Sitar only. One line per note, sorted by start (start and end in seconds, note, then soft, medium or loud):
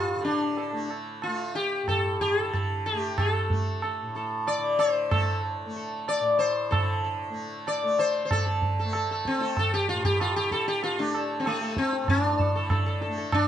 0.00 0.24 F4 medium
0.25 0.86 D4 medium
0.58 0.88 A4 soft
1.23 1.57 F4 medium
1.55 1.88 G4 medium
1.89 2.19 A4 medium
2.21 2.41 G4 medium
2.41 2.52 A4 medium
2.53 2.83 A4 soft
2.86 3.19 G4 medium
3.19 3.82 A4 medium
3.84 4.13 A4 soft
4.16 4.45 A4 soft
4.47 4.78 D5 medium
4.79 5.12 C5 medium
5.11 5.41 A4 medium
5.76 6.06 A4 soft
6.09 6.38 D5 medium
6.39 6.72 C5 medium
6.71 7.01 A4 medium
7.04 7.33 A4 soft
7.68 7.99 D5 medium
7.99 8.23 C5 medium
8.25 8.31 C5 medium
8.32 8.46 A4 medium
8.47 8.76 A4 soft
8.79 8.94 A4 soft
8.95 9.10 A4 soft
9.11 9.40 A4 soft
9.27 9.56 C4 medium
9.42 9.58 A4 soft
9.59 9.73 A4 loud
9.74 9.88 G4 loud
9.89 10.04 F4 loud
10.05 10.21 G4 loud
10.21 10.36 F4 medium
10.36 10.52 G4 loud
10.52 10.67 A4 medium
10.68 10.83 G4 medium
10.83 10.99 F4 medium
10.99 11.13 D4 medium
11.15 11.44 A4 soft
11.40 11.46 C4 medium
11.47 11.75 A3 medium
11.61 11.90 A4 soft
11.78 12.09 C4 loud
12.10 13.33 D4 loud
12.40 12.54 A4 soft
12.55 12.70 A4 soft
12.71 12.85 A4 soft
12.86 13.01 A4 soft
13.02 13.17 A4 soft
13.18 13.46 A4 soft
13.34 13.48 D4 loud